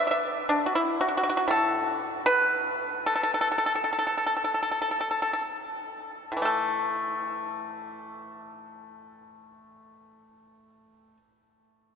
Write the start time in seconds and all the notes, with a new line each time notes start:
Already playing: D3
0.07 E5
0.49 D4
0.66 F#4
0.75 E4
1.01 F#4
1.08 F#4
1.17 F#4
1.23 F#4
1.29 F#4
1.37 F#4
1.48 A2 A4
2.26 B4
3.06 A4
3.16 A4
3.23 A4
3.34 A4
3.41 A4
3.52 A4
3.58 A4
3.66 A4
3.75 A4
3.84 A4
3.93 A4
3.99 A4
4.07 A4
4.17 A4
4.26 A4
4.37 A4
4.44 A4
4.54 A4
4.63 A4
4.71 A4
4.82 A4
4.91 A4
5.01 A4
5.11 A4
5.22 A4
5.33 A4
6.32 A2
6.37 E3
6.42 A3 A4